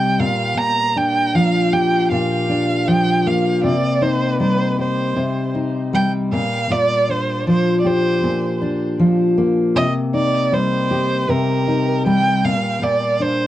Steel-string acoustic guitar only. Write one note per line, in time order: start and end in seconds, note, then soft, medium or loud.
0.00 0.27 C3 medium
0.00 1.34 G3 medium
0.00 0.27 D#4 medium
0.00 1.38 G4 medium
0.19 0.56 A#2 medium
0.57 2.10 A#2 medium
0.96 2.48 D4 medium
1.35 2.86 F3 medium
1.73 4.78 G4 medium
2.11 3.73 A#2 medium
2.49 3.73 D4 medium
2.88 3.73 F3 medium
3.26 5.19 A#3 medium
3.64 5.15 C3 medium
4.02 5.54 D#4 medium
4.40 5.93 G3 medium
4.79 7.50 G4 medium
5.16 6.40 C3 medium
5.55 6.40 D#4 medium
5.93 7.47 G3 medium
6.32 6.69 A#2 medium
6.70 8.23 A#2 medium
7.09 8.60 D4 medium
7.47 8.98 F3 medium
7.85 10.90 G4 medium
8.24 9.85 A#2 medium
8.61 9.85 D4 medium
8.99 9.84 F3 medium
9.38 11.32 A#3 medium
9.76 11.28 C3 medium
10.14 11.66 D#4 medium
10.52 12.05 G3 medium
10.91 13.47 G4 medium
11.29 12.52 C3 medium
11.68 12.53 D#4 medium
12.06 13.47 G3 medium
12.44 12.81 A#2 medium
12.82 13.47 A#2 medium
13.20 13.47 D4 medium